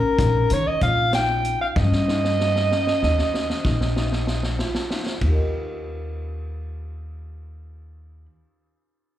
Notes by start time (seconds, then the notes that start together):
Already playing: C#4 A#4
0.19 A#1 D#4, kick, snare, closed hi-hat
0.50 D#3 C#5, closed hi-hat
0.67 D#5
0.81 A#1 F4 F5, kick, closed hi-hat
1.13 D#4 G5, snare, closed hi-hat
1.45 closed hi-hat
1.61 F5
1.76 G2 C#4 D#5, kick, snare
1.92 snare
2.08 D#4, snare
2.24 snare
2.40 snare
2.56 snare
2.71 C#4, snare
2.87 snare
3.03 D#2, snare
3.18 snare
3.34 snare
3.50 snare
3.65 A#1 D#4, kick, snare
3.81 snare
3.96 D#4, snare
4.12 snare
4.27 snare
4.43 snare
4.59 F4, snare
4.75 snare
4.90 D#4, snare
5.06 snare
5.21 D#2 D#4, kick, ride
5.26 G4 A#4
5.34 D#5